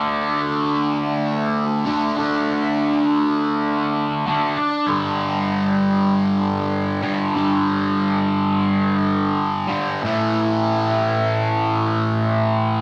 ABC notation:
X:1
M:4/4
L:1/8
Q:1/4=98
K:Glyd
V:1 name="Distorted electric guitar" clef=bass
[D,A,D]6 [D,A,D] [D,A,D]- | [D,A,D]6 [D,A,D] z | [G,,D,G,]6- [G,,D,G,] [G,,D,G,] | [G,,D,G,]6- [G,,D,G,] [G,,D,G,] |
[A,,E,A,]8 |]